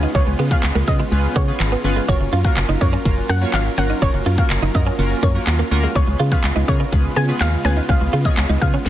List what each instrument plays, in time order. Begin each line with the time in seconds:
Already playing: supersaw synth C#3 G#3 B3 F4
0.03 clean electric guitar D#4
0.15 fm bass C#2, synth keys B3 C#4 F4 G#4 B4, clean electric guitar C#4, synth pluck C#5, kick, closed hi-hat
0.27 fm bass C#2, muted clean electric guitar stroke
0.39 fm bass C#3, clean electric guitar B3, closed hi-hat
0.51 synth keys B3 C#4 F4 G#4 B4, synth pluck F5, kick
0.63 fm bass C#2, clap, closed hi-hat
0.75 fm bass C#2, clean electric guitar A#3
0.87 fm bass C#3, synth keys B3 C#4 F4 G#4 B4, synth pluck D#5, muted clean electric guitar stroke, kick, closed hi-hat
1.00 clean electric guitar G#3
1.11 fm bass C#2, synth keys B3 C#4 F4 G#4 B4, closed hi-hat
1.36 fm bass C#3, clean electric guitar B3, synth pluck C#5, kick, closed hi-hat
1.48 synth keys B3 C#4 F4 G#4 B4
1.60 fm bass G#1, clap, closed hi-hat
1.72 clean electric guitar B3
1.84 fm bass G1, synth keys B3 C#4 F4 G#4 B4, muted clean electric guitar stroke, open hi-hat
1.96 clean electric guitar G#3
2.08 fm bass F#1, supersaw synth F#3 C#4 A#4, synth keys A#3 C#4 F4 F#4 A#4, clean electric guitar F#4, synth pluck C#5, kick, closed hi-hat
2.21 fm bass F#1, muted clean electric guitar stroke
2.33 fm bass F#2, clean electric guitar F4, closed hi-hat
2.45 synth keys A#3 C#4 F4 F#4 A#4, synth pluck F5, kick
2.57 fm bass F#1, clap, closed hi-hat
2.69 fm bass F#1, clean electric guitar D#4
2.81 fm bass F#2, synth keys A#3 C#4 F4 F#4 A#4, synth pluck C#5, muted clean electric guitar stroke, kick, closed hi-hat
2.93 clean electric guitar C#4
3.05 fm bass F#1, synth keys A#3 C#4 F4 F#4 A#4, kick, closed hi-hat
3.29 fm bass F#2, clean electric guitar A#3, synth pluck F#5, closed hi-hat
3.41 synth keys A#3 C#4 F4 F#4 C#5
3.54 fm bass G#1, synth pluck F5, muted clean electric guitar stroke, clap, closed hi-hat
3.78 fm bass G1, synth keys A#3 C#4 F4 F#4 A#4, clean electric guitar C#4, synth pluck F#5, closed hi-hat
3.90 clean electric guitar D#4
4.02 fm bass F#1, synth keys A#3 C#4 F4 F#4 A#4, clean electric guitar C#4, synth pluck C#5, kick, closed hi-hat
4.14 fm bass F#1, muted clean electric guitar stroke
4.26 fm bass F#2, clean electric guitar F4, closed hi-hat
4.38 synth keys A#3 C#4 F4 F#4 A#4, synth pluck F5, kick
4.50 fm bass F#1, clap, closed hi-hat
4.62 fm bass F#1, clean electric guitar D#4
4.74 fm bass F#2, synth keys A#3 C#4 F4 F#4 A#4, synth pluck D#5, muted clean electric guitar stroke, kick, closed hi-hat
4.87 clean electric guitar C#4
4.98 fm bass F#1, synth keys A#3 C#4 F4 F#4 A#4, closed hi-hat
5.23 fm bass F#2, clean electric guitar A#3, synth pluck C#5, kick, closed hi-hat
5.35 synth keys A#3 C#4 F4 F#4 A#4
5.47 fm bass D#2, clap, closed hi-hat
5.59 clean electric guitar A#3
5.71 fm bass D2, synth keys A#3 C#4 F4 F#4 A#4, muted clean electric guitar stroke, closed hi-hat
5.83 clean electric guitar G#3
5.95 fm bass C#2, supersaw synth C#3 G#3 B3 F4, synth keys B3 C#4 F4 G#4 B4, clean electric guitar C#4, synth pluck C#5, kick, closed hi-hat
6.08 fm bass C#2, muted clean electric guitar stroke
6.20 fm bass C#3, clean electric guitar F4, closed hi-hat
6.32 synth keys B3 C#4 F4 G#4 B4, synth pluck F5, kick
6.44 fm bass C#2, clap, closed hi-hat
6.56 fm bass C#2, clean electric guitar D#4
6.68 fm bass C#3, synth keys B3 C#4 F4 G#4 A#4, synth pluck C#5, muted clean electric guitar stroke, kick, closed hi-hat
6.80 clean electric guitar C#4
6.92 fm bass C#2, synth keys B3 C#4 F4 G#4 B4, kick, closed hi-hat
7.16 fm bass C#3, clean electric guitar B3, synth pluck G#5, closed hi-hat
7.28 synth keys B3 C#4 F4 G#4 B4
7.41 fm bass D#2, synth pluck F5, muted clean electric guitar stroke, clap, closed hi-hat
7.65 fm bass D2, synth keys B3 C#4 F4 G#4 B4, clean electric guitar C#4, synth pluck G#5, closed hi-hat
7.77 clean electric guitar D#4
7.89 fm bass C#2, synth keys B3 C#4 F4 G#4 B4, clean electric guitar C#4, synth pluck F5, kick, closed hi-hat
8.01 fm bass C#2, muted clean electric guitar stroke
8.13 fm bass C#3, clean electric guitar F4, closed hi-hat
8.25 synth keys B3 C#4 F4 G#4 C#5, synth pluck D#5, kick
8.37 fm bass C#2, clap, closed hi-hat
8.49 fm bass C#2, clean electric guitar D#4
8.62 fm bass C#3, synth keys B3 C#4 F4 G#4 B4, synth pluck F5, muted clean electric guitar stroke, kick, closed hi-hat
8.74 clean electric guitar C#4
8.86 fm bass C#2, synth keys B3 C#4 F4, snare